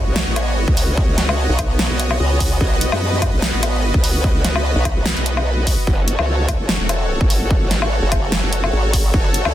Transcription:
0.00 5.83 B3 medium
0.00 5.83 F#4 medium
0.00 2.57 C#5 medium
0.00 5.83 D#5 medium
0.06 0.25 B1 loud
0.16 snare loud
0.27 0.66 A1 loud
0.36 closed hi-hat medium
0.36 low woodblock medium
0.68 1.48 C#2 loud
0.68 kick loud
0.77 open hi-hat medium
0.97 kick loud
1.18 snare medium
1.18 closed hi-hat medium
1.29 low woodblock medium
1.49 1.88 B1 loud
1.59 kick medium
1.59 closed hi-hat medium
1.59 low woodblock medium
1.79 snare loud
1.90 2.18 B1 medium
2.00 closed hi-hat medium
2.11 low woodblock medium
2.20 2.59 C#2 loud
2.40 kick medium
2.40 open hi-hat medium
2.61 2.90 B1 loud
2.61 5.84 B4 medium
2.61 kick loud
2.81 closed hi-hat medium
2.92 3.31 F#2 loud
2.92 low woodblock medium
3.22 kick medium
3.22 closed hi-hat medium
3.22 low woodblock medium
3.33 3.52 B1 loud
3.42 snare loud
3.53 3.92 A1 loud
3.63 closed hi-hat medium
3.63 low woodblock medium
3.94 4.74 C#2 loud
3.94 kick loud
4.04 open hi-hat loud
4.24 kick loud
4.45 snare medium
4.45 closed hi-hat medium
4.56 low woodblock medium
4.76 4.94 B1 loud
4.85 kick medium
4.85 closed hi-hat medium
4.85 low woodblock medium
4.96 5.15 B1 loud
5.06 snare loud
5.17 5.76 B1 loud
5.17 closed hi-hat soft
5.26 closed hi-hat medium
5.37 low woodblock medium
5.67 kick medium
5.67 open hi-hat loud
5.87 6.17 F#1 loud
5.87 9.54 F#4 medium
5.87 9.54 A4 medium
5.87 9.54 C#5 medium
5.87 kick loud
6.08 closed hi-hat medium
6.19 6.58 C#2 loud
6.19 low woodblock medium
6.49 kick medium
6.49 closed hi-hat medium
6.49 low woodblock medium
6.60 6.78 F#1 loud
6.69 snare loud
6.80 7.19 E1 loud
6.89 closed hi-hat medium
6.89 low woodblock medium
7.21 8.01 G#1 loud
7.21 kick loud
7.30 open hi-hat medium
7.51 kick loud
7.71 snare medium
7.71 closed hi-hat medium
7.82 low woodblock medium
8.02 8.41 F#1 loud
8.12 kick medium
8.12 closed hi-hat medium
8.12 low woodblock medium
8.32 snare loud
8.43 8.71 F#1 loud
8.53 closed hi-hat medium
8.64 low woodblock medium
8.73 9.12 G#1 loud
8.93 kick medium
8.93 open hi-hat loud
9.14 9.44 F#1 loud
9.14 kick loud
9.34 closed hi-hat medium
9.45 9.54 C#2 medium
9.45 low woodblock medium

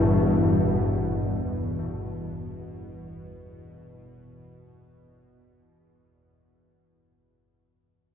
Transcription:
0.00 6.12 E2 medium
0.00 0.13 G2 medium
0.00 6.12 B2 medium
0.00 7.53 E3 medium
0.00 6.00 E4 medium
0.00 6.00 B4 medium
0.00 6.00 F#5 medium
0.00 6.03 F#5 medium

